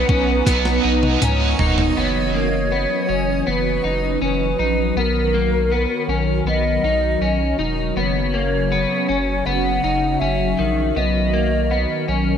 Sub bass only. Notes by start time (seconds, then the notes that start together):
0.09 B1
0.47 B1
0.84 B1
1.22 C#2
1.59 E1
1.97 F#1
3.09 F#1
3.47 F#1
3.84 F#1
4.21 F#1
4.59 A#1
4.96 B1
6.08 B1
6.45 B1
6.83 B1
7.21 B1
7.59 E1
7.96 F#1
9.09 F#1
9.46 F#1
9.84 F#1
10.21 F#1
10.59 A#1
10.96 B1
12.08 B1